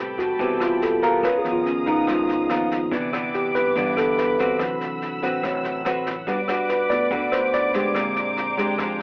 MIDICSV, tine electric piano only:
0, 0, Header, 1, 2, 480
1, 0, Start_track
1, 0, Tempo, 419580
1, 1413, Time_signature, 4, 2, 24, 8
1, 10320, End_track
2, 0, Start_track
2, 0, Title_t, "Tine electric piano"
2, 0, Program_c, 0, 4
2, 0, Control_c, 0, 64, 127
2, 0, Note_on_c, 0, 48, 39
2, 0, Note_on_c, 0, 55, 37
2, 177, Note_off_c, 0, 48, 0
2, 180, Note_off_c, 0, 55, 0
2, 214, Note_on_c, 0, 66, 65
2, 445, Note_on_c, 0, 48, 37
2, 446, Note_off_c, 0, 66, 0
2, 455, Note_on_c, 0, 55, 33
2, 458, Note_on_c, 0, 59, 40
2, 464, Note_on_c, 0, 67, 66
2, 665, Note_off_c, 0, 48, 0
2, 670, Note_off_c, 0, 55, 0
2, 672, Note_off_c, 0, 59, 0
2, 692, Note_off_c, 0, 67, 0
2, 699, Note_on_c, 0, 65, 61
2, 929, Note_off_c, 0, 65, 0
2, 943, Note_on_c, 0, 69, 54
2, 1171, Note_off_c, 0, 69, 0
2, 1175, Note_on_c, 0, 70, 69
2, 1407, Note_off_c, 0, 70, 0
2, 1426, Note_on_c, 0, 71, 69
2, 1429, Control_c, 0, 64, 0
2, 1575, Note_off_c, 0, 71, 0
2, 1582, Note_on_c, 0, 68, 56
2, 1634, Control_c, 0, 64, 127
2, 1646, Note_on_c, 0, 51, 42
2, 1649, Note_on_c, 0, 53, 40
2, 1658, Note_on_c, 0, 59, 51
2, 1733, Note_off_c, 0, 68, 0
2, 1739, Note_on_c, 0, 65, 58
2, 1891, Note_off_c, 0, 65, 0
2, 1898, Note_on_c, 0, 61, 53
2, 1968, Note_off_c, 0, 51, 0
2, 1970, Note_off_c, 0, 53, 0
2, 1975, Note_off_c, 0, 59, 0
2, 2128, Note_off_c, 0, 61, 0
2, 2134, Note_on_c, 0, 63, 63
2, 2366, Note_off_c, 0, 63, 0
2, 2379, Note_on_c, 0, 65, 55
2, 2521, Note_off_c, 0, 65, 0
2, 2845, Note_on_c, 0, 51, 38
2, 2847, Note_on_c, 0, 53, 35
2, 2853, Note_on_c, 0, 59, 42
2, 2854, Note_on_c, 0, 58, 34
2, 3065, Note_off_c, 0, 51, 0
2, 3066, Note_off_c, 0, 53, 0
2, 3069, Note_off_c, 0, 59, 0
2, 3070, Note_off_c, 0, 58, 0
2, 3328, Note_on_c, 0, 50, 38
2, 3335, Note_on_c, 0, 52, 40
2, 3342, Note_on_c, 0, 59, 47
2, 3347, Control_c, 0, 64, 0
2, 3527, Control_c, 0, 64, 127
2, 3650, Note_off_c, 0, 50, 0
2, 3653, Note_off_c, 0, 52, 0
2, 3657, Note_off_c, 0, 59, 0
2, 3830, Note_on_c, 0, 67, 58
2, 4055, Note_off_c, 0, 67, 0
2, 4062, Note_on_c, 0, 71, 78
2, 4289, Note_on_c, 0, 50, 39
2, 4296, Note_on_c, 0, 52, 34
2, 4299, Note_on_c, 0, 59, 43
2, 4504, Note_off_c, 0, 71, 0
2, 4507, Note_off_c, 0, 50, 0
2, 4510, Note_off_c, 0, 52, 0
2, 4512, Note_off_c, 0, 59, 0
2, 4545, Note_on_c, 0, 69, 66
2, 4772, Note_off_c, 0, 69, 0
2, 4788, Note_on_c, 0, 71, 57
2, 5254, Note_on_c, 0, 48, 40
2, 5257, Note_on_c, 0, 52, 40
2, 5262, Note_on_c, 0, 54, 41
2, 5267, Control_c, 0, 64, 0
2, 5455, Note_off_c, 0, 71, 0
2, 5503, Control_c, 0, 64, 127
2, 5573, Note_off_c, 0, 48, 0
2, 5574, Note_off_c, 0, 52, 0
2, 5577, Note_off_c, 0, 54, 0
2, 7185, Control_c, 0, 64, 0
2, 7387, Control_c, 0, 64, 127
2, 7662, Note_on_c, 0, 71, 61
2, 7890, Note_off_c, 0, 71, 0
2, 7892, Note_on_c, 0, 74, 78
2, 7893, Note_on_c, 0, 57, 41
2, 7897, Note_on_c, 0, 59, 50
2, 8211, Note_off_c, 0, 57, 0
2, 8213, Note_off_c, 0, 59, 0
2, 8338, Note_off_c, 0, 74, 0
2, 8375, Note_on_c, 0, 72, 75
2, 8606, Note_off_c, 0, 72, 0
2, 8624, Note_on_c, 0, 74, 70
2, 9084, Note_on_c, 0, 50, 41
2, 9095, Note_on_c, 0, 56, 39
2, 9098, Note_on_c, 0, 60, 44
2, 9105, Control_c, 0, 64, 0
2, 9292, Note_off_c, 0, 74, 0
2, 9299, Control_c, 0, 64, 127
2, 10320, Note_off_c, 0, 50, 0
2, 10320, Note_off_c, 0, 56, 0
2, 10320, Note_off_c, 0, 60, 0
2, 10320, End_track
0, 0, End_of_file